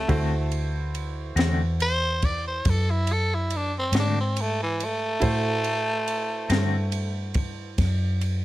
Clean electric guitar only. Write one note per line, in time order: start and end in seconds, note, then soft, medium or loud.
0.08 0.33 D3 medium
0.08 0.34 A3 medium
0.08 0.34 C4 medium
0.08 0.35 F#4 medium
1.36 1.63 D3 medium
1.36 1.63 A3 medium
1.36 1.63 C4 medium
1.36 1.62 F#4 medium
3.94 4.20 D3 medium
3.94 4.20 A3 medium
3.94 4.20 C4 medium
3.94 4.19 F#4 medium
6.50 6.77 D3 medium
6.50 6.76 A3 medium
6.50 6.76 C4 medium
6.50 6.76 F#4 medium